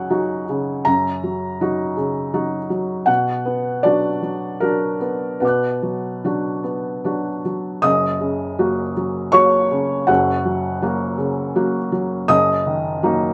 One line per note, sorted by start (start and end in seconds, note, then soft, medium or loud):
0.00 0.82 F#2 soft
0.00 0.49 C#3 soft
0.00 0.10 F#3 soft
0.00 0.11 D#4 soft
0.00 0.11 F#4 soft
0.00 0.89 D#5 medium
0.00 0.86 F#5 medium
0.00 0.89 G#5 medium
0.10 0.44 F#3 soft
0.10 0.44 D#4 soft
0.10 0.45 F#4 soft
0.49 1.09 C#3 soft
0.85 3.04 F#2 soft
0.85 3.07 A#5 medium
1.23 1.59 F#3 soft
1.61 1.94 F#3 soft
1.61 1.94 D#4 soft
1.61 1.94 F#4 soft
1.97 2.56 C#3 soft
2.34 2.67 F#3 soft
2.34 2.67 D#4 soft
2.34 2.67 F#4 soft
2.70 3.07 F#3 soft
3.06 5.38 B2 soft
3.06 3.83 F#5 medium
3.45 4.08 B3 soft
3.83 4.20 F#3 soft
3.83 4.20 D4 soft
3.83 4.20 F#4 soft
3.83 4.62 D5 medium
4.22 4.60 F#3 soft
4.60 4.98 F#3 soft
4.60 4.98 D4 soft
4.60 4.98 F#4 soft
4.60 5.42 A#4 medium
5.01 5.67 B3 soft
5.40 7.80 B2 soft
5.40 7.44 B4 soft
5.40 7.80 F#5 soft
5.45 7.82 D6 soft
5.45 7.83 F#6 soft
5.82 6.23 F#3 soft
6.24 6.61 F#3 soft
6.24 6.61 D4 soft
6.24 6.61 F#4 soft
6.64 7.29 B3 soft
7.04 7.41 F#3 soft
7.04 7.41 D4 soft
7.04 7.42 F#4 soft
7.45 7.84 F#3 soft
7.82 10.04 F#1 soft
7.82 10.04 F#2 soft
7.82 9.30 D#5 medium
7.82 9.33 D#6 medium
8.21 8.81 C#3 soft
8.59 8.93 F#3 soft
8.59 8.93 A#3 soft
8.59 8.93 F#4 soft
8.97 9.32 F#3 soft
9.32 9.67 F#3 soft
9.32 9.68 A#3 soft
9.32 9.68 F#4 soft
9.32 10.04 C#5 medium
9.32 10.07 C#6 loud
9.71 10.31 C#3 soft
10.07 12.25 F#1 medium
10.07 12.26 F#2 soft
10.07 10.81 F#4 medium
10.07 11.92 F#5 medium
10.45 10.80 F#3 soft
10.82 11.15 F#3 soft
10.82 11.16 A#3 soft
10.82 11.16 F#4 soft
11.18 11.77 C#3 soft
11.55 11.89 F#3 soft
11.55 11.89 A#3 soft
11.55 11.89 F#4 soft
11.92 12.29 F#3 soft
12.28 13.34 F#1 medium
12.28 13.34 F#2 medium
12.28 13.34 D#5 medium
12.28 13.34 D#6 medium
12.66 13.26 D#3 soft
13.03 13.34 F#3 medium
13.03 13.34 A#3 soft
13.03 13.34 D#4 medium